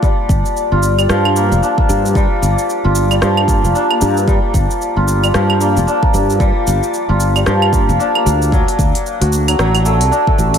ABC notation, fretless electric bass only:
X:1
M:4/4
L:1/16
Q:"Swing 16ths" 1/4=113
K:Gm
V:1 name="Fretless electric bass" clef=bass
z2 G,,, z2 G,,,3 G,,3 F,,, z2 G,,2- | G,, z G,,, z2 G,,,3 G,,3 F,,, z2 G,,2- | G,, z G,,, z2 G,,,3 G,,3 F,,, z2 G,,2- | G,, z G,,, z2 G,,,3 G,,3 F,,, z2 D,,2- |
D,, z D,, z2 D,,3 A,,,3 C,, z2 A,,,2 |]